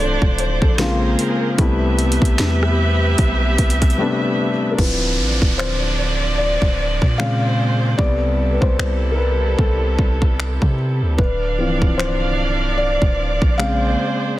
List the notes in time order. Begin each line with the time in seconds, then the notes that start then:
Already playing: C1 D3 F3 A3 C4 D4 E4 C5 D5
0.00 A4
0.22 D1, kick
0.38 C5, closed hi-hat
0.62 A#1 A4, kick
0.78 C#3 G#3 A#3 C4 F4 G#4 A#4, snare, closed hi-hat
1.19 closed hi-hat
1.58 C2 C3 G3 A3 B3 E4 G4 B4 E5, kick, closed hi-hat
1.99 closed hi-hat
2.12 closed hi-hat
2.22 C2, kick, closed hi-hat
2.39 E2, snare, closed hi-hat
2.63 cross-stick
3.18 B1, kick, closed hi-hat
3.58 C2, kick, closed hi-hat
3.70 closed hi-hat
3.82 kick, cross-stick, closed hi-hat
3.90 closed hi-hat
3.97 C3 G3 A3 B3 D4
4.72 A#4
4.78 D1 D3 F3 C4 D4 E4 B4 D5, kick, crash, downlifter
5.19 A1
5.42 D1, kick
5.58 C5, finger snap
6.38 D5
6.62 D1, kick
7.02 A#2, kick
7.18 C#3 G#3 A#3 C4 G#4 C5 F5, finger snap
7.98 C2 C3 G3 B3 E4 A4 D5, kick
8.52 B4
8.61 C2 C5, kick
8.79 C2, finger snap
9.12 A#4
9.18 B4
9.58 C2 A4, kick
9.99 C2, kick
10.22 kick
10.40 finger snap
10.62 C3, kick
11.02 D2
11.18 D1 D3 D4 B4 D5 F5, kick
11.58 C1 E3 F3 C4
11.82 C1, kick
11.98 C5, finger snap
12.78 D5
13.02 D1, kick
13.42 A#1, kick
13.58 C#3 G#3 A#3 C4 G#4 C5 F5, finger snap